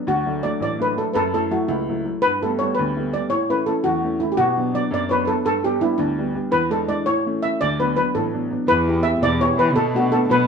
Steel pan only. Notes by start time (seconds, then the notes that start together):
0.08 F#4
0.43 D5
0.62 D5
0.82 B4
0.98 A4
1.13 A4 B4
1.34 A4
1.51 F#4
1.68 E4
2.22 B4
2.43 A4
2.59 C#5
2.75 B4
3.14 D5
3.30 C#5
3.50 B4
3.66 A4
3.84 F#4
4.20 E4
4.32 G4
4.37 F#4
4.75 D5
4.94 D5
5.09 B4 C#5
5.25 A4 B4
5.46 A4
5.64 G4
5.81 E4
5.98 D4
6.52 B4
6.71 A4
6.89 D5
7.06 C#5
7.43 E5
7.61 D5
7.80 B4
7.97 B4
8.15 A4
8.68 B4
9.03 E5
9.23 D5
9.41 C#5
9.59 B4
9.76 A4
9.96 F#4
10.12 A4
10.31 B4